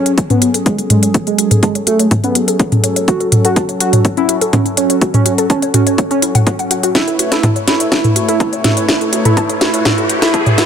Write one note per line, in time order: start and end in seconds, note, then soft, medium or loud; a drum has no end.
0.00 6.91 F#3 medium
0.00 0.12 C#4 medium
0.00 6.91 C#4 medium
0.00 3.04 G#4 medium
0.00 6.91 A4 medium
0.06 0.15 C#5 medium
0.06 closed hi-hat medium
0.18 0.27 C#5 medium
0.18 kick loud
0.18 closed hi-hat medium
0.30 0.49 B3 medium
0.30 0.39 C#4 loud
0.30 closed hi-hat soft
0.30 mid tom medium
0.42 0.54 F#4 medium
0.42 closed hi-hat loud
0.54 0.65 A4 medium
0.54 closed hi-hat medium
0.66 0.79 G#3 medium
0.66 0.78 C#5 medium
0.66 kick loud
0.66 closed hi-hat medium
0.78 0.90 C#4 medium
0.78 closed hi-hat soft
0.90 1.09 G#3 medium
0.90 1.00 C#5 medium
0.90 closed hi-hat loud
0.90 mid tom medium
1.03 1.12 C#5 medium
1.03 closed hi-hat medium
1.14 1.24 F#4 medium
1.14 kick loud
1.14 closed hi-hat medium
1.27 1.46 G#3 medium
1.27 1.36 A4 medium
1.27 closed hi-hat soft
1.38 1.50 F#4 medium
1.38 closed hi-hat loud
1.51 1.62 A4 loud
1.51 closed hi-hat medium
1.51 mid tom medium
1.63 1.76 G#3 medium
1.63 1.73 A5 loud
1.63 kick loud
1.63 closed hi-hat medium
1.75 1.86 C#5 medium
1.75 closed hi-hat medium
1.87 2.06 A3 medium
1.87 1.97 F#4 loud
1.87 closed hi-hat loud
1.99 2.09 C#5 medium
1.99 closed hi-hat medium
2.11 2.21 C#5 medium
2.11 kick loud
2.11 closed hi-hat medium
2.11 mid tom medium
2.24 2.36 B3 medium
2.24 2.33 C#4 loud
2.24 closed hi-hat soft
2.35 2.47 F#4 medium
2.35 closed hi-hat loud
2.48 2.59 A4 loud
2.48 closed hi-hat medium
2.59 2.71 C#5 medium
2.59 kick loud
2.59 closed hi-hat medium
2.72 2.83 C#4 medium
2.72 closed hi-hat soft
2.72 mid tom medium
2.84 2.94 C#5 medium
2.84 closed hi-hat loud
2.96 3.05 C#5 medium
2.96 closed hi-hat medium
3.08 3.27 F#4 loud
3.08 3.18 F#4 medium
3.08 6.91 F#4 medium
3.08 kick loud
3.08 closed hi-hat medium
3.20 3.30 A4 medium
3.20 closed hi-hat soft
3.32 3.44 F#4 medium
3.32 closed hi-hat loud
3.32 mid tom medium
3.45 3.63 F#4 loud
3.45 3.56 A4 loud
3.45 closed hi-hat medium
3.56 3.66 A5 loud
3.56 kick loud
3.56 closed hi-hat medium
3.69 3.80 C#5 medium
3.69 closed hi-hat soft
3.80 4.00 F#4 medium
3.80 3.90 F#4 loud
3.80 closed hi-hat loud
3.93 4.02 C#5 medium
3.93 closed hi-hat medium
3.93 mid tom medium
4.05 4.14 C#5 medium
4.05 kick loud
4.05 closed hi-hat medium
4.17 4.26 C#4 loud
4.17 4.36 E4 loud
4.17 closed hi-hat soft
4.29 4.41 F#4 medium
4.29 closed hi-hat loud
4.41 4.52 A4 loud
4.41 closed hi-hat medium
4.53 4.66 C#4 medium
4.53 4.65 C#5 medium
4.53 kick loud
4.53 closed hi-hat medium
4.53 mid tom medium
4.66 4.77 C#4 medium
4.66 closed hi-hat soft
4.77 4.96 C#4 medium
4.77 4.87 C#5 medium
4.77 closed hi-hat loud
4.90 4.99 C#5 medium
4.90 closed hi-hat medium
5.01 5.11 F#4 medium
5.01 kick loud
5.01 closed hi-hat medium
5.14 5.33 C#4 loud
5.14 5.23 A4 medium
5.14 closed hi-hat soft
5.14 mid tom medium
5.26 5.38 F#4 medium
5.26 closed hi-hat loud
5.38 5.49 A4 loud
5.38 closed hi-hat medium
5.50 5.63 C#4 medium
5.50 5.60 A5 loud
5.50 kick loud
5.50 closed hi-hat medium
5.62 5.73 C#5 medium
5.62 closed hi-hat medium
5.74 5.93 C#4 medium
5.74 5.84 F#4 loud
5.74 closed hi-hat loud
5.74 mid tom medium
5.87 5.96 C#5 medium
5.87 closed hi-hat medium
5.98 6.08 C#5 medium
5.98 kick loud
5.98 closed hi-hat medium
6.11 6.20 C#4 loud
6.11 6.23 C#4 medium
6.11 closed hi-hat soft
6.22 6.34 E4 medium
6.22 closed hi-hat loud
6.35 6.44 F#5 medium
6.35 closed hi-hat medium
6.35 mid tom medium
6.47 6.53 F#4 loud
6.47 kick loud
6.47 closed hi-hat medium
6.59 6.70 F#5 medium
6.59 closed hi-hat soft
6.71 6.82 F#4 loud
6.71 closed hi-hat loud
6.83 6.89 F#4 loud
6.83 closed hi-hat medium
6.95 10.66 A3 medium
6.95 7.14 E4 medium
6.95 10.66 E4 medium
6.95 7.05 F#4 medium
6.95 10.66 B4 medium
6.95 10.66 C#5 medium
6.95 kick loud
6.95 snare medium
6.95 closed hi-hat medium
6.95 riser medium
7.08 7.17 A4 medium
7.08 closed hi-hat soft
7.19 7.31 F#4 medium
7.19 closed hi-hat loud
7.32 7.50 E4 medium
7.32 7.43 A4 medium
7.32 snare soft
7.32 closed hi-hat medium
7.43 7.53 A5 medium
7.43 kick loud
7.43 closed hi-hat medium
7.43 mid tom loud
7.56 7.67 C#5 medium
7.56 closed hi-hat soft
7.68 7.87 E4 medium
7.68 7.77 F#4 medium
7.68 snare medium
7.68 closed hi-hat loud
7.80 7.89 C#5 medium
7.80 closed hi-hat medium
7.92 8.11 E4 medium
7.92 8.02 F#4 medium
7.92 kick loud
7.92 snare medium
7.92 closed hi-hat medium
8.04 8.13 A4 medium
8.04 closed hi-hat soft
8.04 mid tom medium
8.16 8.28 F#4 medium
8.16 closed hi-hat loud
8.29 8.47 E4 medium
8.29 8.40 A4 medium
8.29 closed hi-hat medium
8.40 8.50 A5 medium
8.40 kick loud
8.40 closed hi-hat medium
8.53 8.64 C#5 medium
8.53 closed hi-hat soft
8.64 8.83 E4 medium
8.64 8.74 F#4 medium
8.64 snare medium
8.64 closed hi-hat loud
8.64 mid tom loud
8.77 8.86 C#5 medium
8.77 closed hi-hat medium
8.89 9.08 E4 medium
8.89 8.98 F#4 medium
8.89 kick loud
8.89 snare medium
8.89 closed hi-hat medium
9.01 9.10 A4 medium
9.01 closed hi-hat soft
9.13 9.25 F#4 medium
9.13 closed hi-hat loud
9.25 9.44 E4 medium
9.25 9.36 A4 loud
9.25 closed hi-hat medium
9.25 mid tom loud
9.37 9.47 A5 loud
9.37 kick loud
9.37 closed hi-hat medium
9.49 9.61 C#5 medium
9.49 closed hi-hat medium
9.61 9.80 E4 medium
9.61 9.71 F#4 loud
9.61 snare medium
9.61 closed hi-hat loud
9.74 9.83 C#5 medium
9.74 closed hi-hat medium
9.85 10.04 E4 loud
9.85 9.95 F#4 medium
9.85 kick loud
9.85 snare medium
9.85 closed hi-hat medium
9.85 mid tom medium
9.98 10.07 A4 medium
9.98 closed hi-hat soft
10.10 10.21 F#4 medium
10.10 closed hi-hat loud
10.22 10.41 E4 loud
10.22 10.33 A4 medium
10.22 snare medium
10.22 closed hi-hat medium
10.34 10.43 A5 loud
10.34 kick loud
10.34 closed hi-hat medium
10.46 10.57 C#5 medium
10.46 closed hi-hat soft
10.46 mid tom loud
10.58 10.66 E4 medium
10.58 10.66 F#4 loud
10.58 snare medium
10.58 closed hi-hat loud